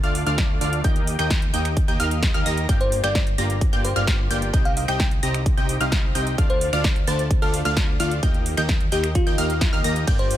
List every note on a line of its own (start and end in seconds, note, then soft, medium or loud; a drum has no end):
0.04 0.24 D2 loud
0.04 0.22 A3 medium
0.04 0.22 D4 medium
0.04 0.22 F4 medium
0.04 0.22 D5 medium
0.04 0.22 F5 loud
0.04 0.22 F6 medium
0.04 closed hi-hat soft
0.15 open hi-hat loud
0.26 0.59 D2 loud
0.26 0.58 A3 medium
0.26 0.58 D4 medium
0.26 0.58 F4 medium
0.26 0.58 D5 medium
0.26 0.58 F5 loud
0.26 0.59 F6 loud
0.26 closed hi-hat medium
0.38 kick loud
0.38 snare loud
0.38 closed hi-hat medium
0.61 0.82 D2 loud
0.61 0.82 A3 medium
0.61 0.82 D4 medium
0.61 0.82 F4 medium
0.61 0.82 D5 medium
0.61 0.82 F5 medium
0.61 0.82 F6 medium
0.61 open hi-hat loud
0.73 closed hi-hat medium
0.84 1.17 D#2 loud
0.84 1.16 A#3 medium
0.84 1.16 D#4 medium
0.84 1.16 G4 medium
0.84 1.16 D#5 medium
0.84 1.16 G5 medium
0.84 1.16 G6 medium
0.84 kick loud
0.84 closed hi-hat medium
0.96 closed hi-hat soft
1.07 open hi-hat loud
1.19 1.51 D#2 loud
1.19 1.31 A#3 medium
1.19 1.31 D#4 medium
1.19 1.31 G4 medium
1.19 1.31 D#5 medium
1.19 1.31 G5 loud
1.19 1.31 G6 loud
1.19 finger snap medium
1.19 closed hi-hat medium
1.30 kick loud
1.30 snare loud
1.30 closed hi-hat medium
1.42 closed hi-hat soft
1.53 1.86 D#2 loud
1.53 1.72 A#3 medium
1.53 1.72 D#4 medium
1.53 1.72 G4 medium
1.53 1.72 D#5 medium
1.53 1.72 G5 medium
1.53 1.72 G6 medium
1.53 open hi-hat loud
1.65 finger snap medium
1.65 closed hi-hat medium
1.77 kick loud
1.77 closed hi-hat medium
1.88 1.98 D#2 loud
1.88 1.97 A#3 medium
1.88 1.97 D#4 medium
1.88 1.97 G4 medium
1.88 1.97 D#5 medium
1.88 1.97 G5 medium
1.88 1.97 G6 loud
1.88 closed hi-hat soft
2.00 2.32 D#2 loud
2.00 2.32 A#3 medium
2.00 2.32 D#4 medium
2.00 2.32 G4 medium
2.00 2.32 D#5 medium
2.00 2.32 F5 medium
2.00 2.32 F6 loud
2.00 open hi-hat loud
2.11 closed hi-hat medium
2.23 kick loud
2.23 snare loud
2.23 closed hi-hat medium
2.34 2.44 D#2 loud
2.34 2.44 A#3 medium
2.34 2.44 D#4 medium
2.34 2.44 G4 medium
2.34 2.44 D#5 medium
2.34 2.44 F5 loud
2.34 2.44 F6 loud
2.34 closed hi-hat soft
2.46 2.67 D#2 loud
2.46 2.66 A#3 loud
2.46 2.66 D#4 medium
2.46 2.66 G4 medium
2.46 2.66 D#5 medium
2.46 2.66 A#5 loud
2.46 2.66 A#6 loud
2.46 open hi-hat loud
2.57 closed hi-hat medium
2.69 3.01 G1 loud
2.69 3.01 A#3 medium
2.69 3.01 F4 medium
2.69 3.01 G4 medium
2.69 3.01 D5 medium
2.69 3.01 G5 medium
2.69 3.01 G6 medium
2.69 kick loud
2.69 closed hi-hat medium
2.81 3.01 C5 medium
2.81 closed hi-hat soft
2.92 open hi-hat loud
3.04 3.36 G1 loud
3.04 3.15 A#3 medium
3.04 3.15 F4 medium
3.04 3.15 G4 medium
3.04 3.15 D5 medium
3.04 3.17 D5 medium
3.04 3.15 G5 loud
3.04 3.15 G6 loud
3.04 finger snap medium
3.04 closed hi-hat medium
3.15 kick loud
3.15 snare loud
3.15 closed hi-hat medium
3.27 closed hi-hat soft
3.38 3.71 G1 loud
3.38 3.57 A#3 medium
3.38 3.57 F4 medium
3.38 3.57 G4 medium
3.38 3.57 D5 medium
3.38 3.57 A#5 medium
3.38 3.57 A#6 medium
3.38 open hi-hat loud
3.50 closed hi-hat medium
3.61 kick loud
3.61 closed hi-hat medium
3.73 3.94 G1 loud
3.73 3.91 A#3 medium
3.73 3.91 F4 medium
3.73 3.91 G4 medium
3.73 3.91 D5 medium
3.73 3.91 G5 medium
3.73 3.91 G6 loud
3.73 closed hi-hat soft
3.85 3.98 C5 medium
3.85 open hi-hat loud
3.96 4.28 G1 loud
3.96 4.28 A#3 medium
3.96 4.28 F4 medium
3.96 4.28 G4 medium
3.96 4.28 D5 medium
3.96 4.28 F5 medium
3.96 4.28 F6 loud
3.96 closed hi-hat medium
4.07 kick loud
4.07 snare loud
4.07 closed hi-hat medium
4.30 4.51 G1 loud
4.30 4.51 A#3 medium
4.30 4.51 F4 medium
4.30 4.51 G4 medium
4.30 4.51 D5 medium
4.30 4.51 G5 medium
4.30 4.51 G6 medium
4.30 open hi-hat loud
4.42 closed hi-hat medium
4.53 4.86 C2 medium
4.53 4.85 C4 medium
4.53 4.85 D#4 medium
4.53 4.85 G4 medium
4.53 4.85 D#5 medium
4.53 4.85 G5 medium
4.53 4.85 G6 medium
4.53 kick loud
4.53 closed hi-hat medium
4.65 4.73 F5 medium
4.65 closed hi-hat soft
4.77 4.84 F5 medium
4.77 open hi-hat loud
4.88 5.21 C2 loud
4.88 5.00 C4 medium
4.88 5.00 D#4 medium
4.88 5.00 G4 medium
4.88 5.00 D#5 medium
4.88 5.00 G5 loud
4.88 4.96 G5 medium
4.88 5.00 G6 loud
4.88 finger snap medium
4.88 closed hi-hat medium
5.00 5.07 G5 medium
5.00 kick loud
5.00 snare loud
5.00 closed hi-hat medium
5.11 closed hi-hat soft
5.23 5.55 C2 loud
5.23 5.41 C4 medium
5.23 5.41 D#4 medium
5.23 5.41 G4 medium
5.23 5.41 D#5 medium
5.23 5.41 A#5 medium
5.23 5.41 A#6 medium
5.23 open hi-hat loud
5.34 finger snap medium
5.34 closed hi-hat medium
5.46 kick loud
5.46 closed hi-hat medium
5.57 5.78 C2 loud
5.57 5.76 C4 medium
5.57 5.76 D#4 medium
5.57 5.76 G4 medium
5.57 5.76 D#5 medium
5.57 5.76 G5 medium
5.57 5.76 G6 medium
5.57 closed hi-hat soft
5.69 open hi-hat loud
5.80 6.13 C2 loud
5.80 6.12 C4 medium
5.80 6.12 D#4 medium
5.80 6.12 G4 medium
5.80 6.12 D#5 medium
5.80 6.12 F5 loud
5.80 6.12 F6 loud
5.80 closed hi-hat medium
5.92 kick loud
5.92 snare loud
5.92 closed hi-hat medium
6.15 6.36 C2 loud
6.15 6.35 C4 medium
6.15 6.35 D#4 medium
6.15 6.35 G4 medium
6.15 6.35 D#5 medium
6.15 6.35 G5 medium
6.15 6.35 G6 medium
6.15 open hi-hat loud
6.27 closed hi-hat medium
6.38 6.71 D2 loud
6.38 6.70 A3 medium
6.38 6.70 D4 medium
6.38 6.70 F4 medium
6.38 6.70 D5 medium
6.38 6.70 F5 medium
6.38 6.70 F6 medium
6.38 kick loud
6.38 closed hi-hat medium
6.50 6.71 C5 loud
6.50 closed hi-hat soft
6.61 open hi-hat loud
6.73 7.05 D2 loud
6.73 6.84 A3 loud
6.73 6.84 D4 medium
6.73 6.84 F4 medium
6.73 6.84 D5 medium
6.73 6.87 D5 loud
6.73 6.84 F5 loud
6.73 6.84 F6 loud
6.73 finger snap medium
6.73 closed hi-hat medium
6.84 kick loud
6.84 snare loud
6.84 closed hi-hat medium
6.96 closed hi-hat soft
7.07 7.40 D2 loud
7.07 7.26 A3 medium
7.07 7.26 D4 medium
7.07 7.26 F4 medium
7.07 7.21 C5 loud
7.07 7.26 D5 medium
7.07 7.26 A5 medium
7.07 7.26 A6 medium
7.07 open hi-hat loud
7.19 closed hi-hat medium
7.31 kick loud
7.31 closed hi-hat medium
7.42 7.63 D2 loud
7.42 7.61 A3 medium
7.42 7.61 D4 medium
7.42 7.61 F4 medium
7.42 7.56 A4 loud
7.42 7.61 D5 medium
7.42 7.61 F5 loud
7.42 7.61 F6 medium
7.42 closed hi-hat soft
7.54 open hi-hat loud
7.65 7.98 D2 loud
7.65 7.97 A3 medium
7.65 7.97 D4 medium
7.65 7.97 F4 medium
7.65 7.97 D5 medium
7.65 7.97 F5 loud
7.65 7.97 F6 medium
7.65 closed hi-hat medium
7.77 kick loud
7.77 snare loud
7.77 closed hi-hat medium
8.00 8.21 D2 loud
8.00 8.20 A3 medium
8.00 8.20 D4 medium
8.00 8.20 F4 medium
8.00 8.14 F4 medium
8.00 8.20 D5 medium
8.00 8.20 F5 medium
8.00 8.20 F6 medium
8.00 open hi-hat loud
8.11 closed hi-hat medium
8.23 8.55 D#2 loud
8.23 8.55 A#3 medium
8.23 8.55 D#4 medium
8.23 8.55 G4 medium
8.23 8.55 D#5 medium
8.23 8.55 G5 medium
8.23 8.55 G6 medium
8.23 kick loud
8.23 closed hi-hat medium
8.34 closed hi-hat soft
8.46 open hi-hat loud
8.57 8.90 D#2 loud
8.57 8.69 A#3 loud
8.57 8.69 D#4 medium
8.57 8.69 G4 medium
8.57 8.69 D#5 medium
8.57 8.69 G5 loud
8.57 8.69 G6 loud
8.57 finger snap medium
8.57 closed hi-hat medium
8.69 kick loud
8.69 snare loud
8.69 closed hi-hat medium
8.81 closed hi-hat soft
8.92 9.24 D#2 loud
8.92 9.11 A#3 medium
8.92 9.11 D#4 medium
8.92 9.11 G4 medium
8.92 9.06 G4 medium
8.92 9.11 D#5 medium
8.92 9.11 G5 medium
8.92 9.11 G6 medium
8.92 open hi-hat loud
9.04 finger snap medium
9.04 closed hi-hat medium
9.15 9.80 F4 medium
9.15 kick loud
9.15 closed hi-hat medium
9.27 9.36 D#2 loud
9.27 9.36 A#3 medium
9.27 9.36 D#4 medium
9.27 9.36 G4 medium
9.27 9.36 D#5 medium
9.27 9.36 G5 medium
9.27 9.36 G6 loud
9.27 closed hi-hat soft
9.38 9.71 D#2 loud
9.38 9.70 A#3 medium
9.38 9.70 D#4 medium
9.38 9.70 G4 medium
9.38 9.70 D#5 medium
9.38 9.70 F5 medium
9.38 9.70 F6 loud
9.38 open hi-hat loud
9.50 closed hi-hat medium
9.61 kick loud
9.61 snare loud
9.61 closed hi-hat medium
9.73 9.82 D#2 loud
9.73 9.83 A#3 medium
9.73 9.83 D#4 medium
9.73 9.83 G4 medium
9.73 9.83 D#5 medium
9.73 9.83 F5 loud
9.73 9.83 F6 loud
9.84 10.05 D#2 loud
9.84 10.05 A#3 loud
9.84 10.05 D#4 medium
9.84 10.05 G4 medium
9.84 10.05 D#5 medium
9.84 10.05 A#5 loud
9.84 10.05 A#6 loud
9.84 open hi-hat loud
9.96 closed hi-hat soft
10.07 10.37 G1 loud
10.07 10.37 A#3 medium
10.07 10.37 F4 medium
10.07 10.37 G4 medium
10.07 10.37 D5 medium
10.07 10.37 G5 loud
10.07 10.37 G6 medium
10.07 kick loud
10.07 closed hi-hat medium
10.07 ride medium
10.19 10.37 C5 medium
10.19 closed hi-hat soft
10.31 open hi-hat loud